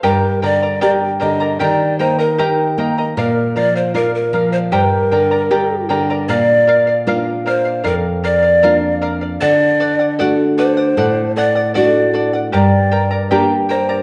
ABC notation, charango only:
X:1
M:2/4
L:1/16
Q:1/4=77
K:Bb
V:1 name="Charango"
[GBdgb]2 [Bdgb] [Bdb] [GBdgb]2 [Bdgb] [Bdb] | [GBgb]2 [Begb] [Beb] [GBegb]2 [Begb] [Beb] | [Bdf]2 [Bdf] [df] [Bdf]2 [Bdf] [df] | [GBdgb]2 [Bdgb] [Bdb] [GBdgb]2 [Bdgb] [Bdb] |
[Bdf]2 [Bdf] [df] [Bdf]2 [Bdf] [df] | [Bdf]2 [Bdf] [df] [Bdf]2 [Bdf] [df] | [Ad^f]2 [Adf] [df] [Adf]2 [Adf] [df] | [Ad^f]2 [Adf] [df] [Adf]2 [Adf] [df] |
[GBdgb]2 [Bdgb] [Bdb] [GBdgb]2 [Bdgb] [Bdb] |]